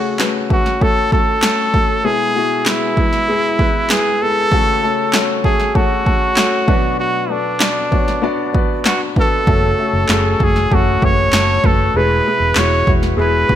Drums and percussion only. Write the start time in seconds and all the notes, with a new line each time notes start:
0.19 snare, clap
0.50 kick
0.66 snare
0.81 kick
1.12 kick
1.42 snare, clap
1.74 kick
2.66 snare, clap
2.97 kick
3.13 snare
3.59 kick
3.90 snare, clap
4.52 kick
5.13 snare, clap
5.44 kick
5.60 snare
5.75 kick
6.06 kick
6.36 snare, clap
6.68 kick
7.60 snare, clap
7.92 kick
8.08 snare
8.55 kick
8.85 snare, clap
9.16 kick
9.47 kick
10.09 snare, clap
10.40 kick
10.56 snare
10.72 kick
11.02 kick
11.33 snare, clap
11.64 kick
12.55 snare, clap
12.87 kick
13.03 snare
13.49 kick